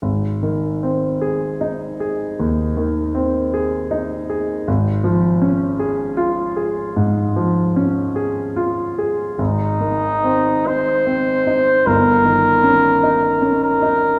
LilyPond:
<<
  \new Staff \with { instrumentName = "Trumpet" } { \time 4/4 \key aes \major \tempo 4 = 51 r1 | r1 | ees'4 c''4 bes'4. bes'8 | }
  \new Staff \with { instrumentName = "Grand piano" } { \time 4/4 \key aes \major \tuplet 3/2 { aes,,8 ees8 c'8 aes'8 ees'8 aes'8 ees,8 ees8 c'8 aes'8 ees'8 aes'8 } | \tuplet 3/2 { aes,,8 f8 des'8 aes'8 f'8 aes'8 aes,8 f8 des'8 aes'8 f'8 aes'8 } | \tuplet 3/2 { aes,,8 ees8 c'8 ees'8 c'8 ees'8 g,,8 ees8 des'8 ees'8 des'8 ees'8 } | }
>>